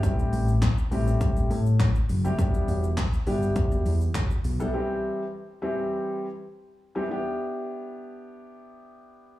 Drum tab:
HH |x-o-x-o-x-o-x-o-|x-o-x-o-x-o-x-o-|----------------|----------------|
SH |xxxxxxxxxxxxxxxx|xxxxxxxxxxxxxxxx|----------------|----------------|
CP |----x-------x---|----x-------x---|----------------|----------------|
SD |----o-------o---|----o-------o---|----------------|----------------|
BD |o---o---o---o---|o---o---o---o---|----------------|----------------|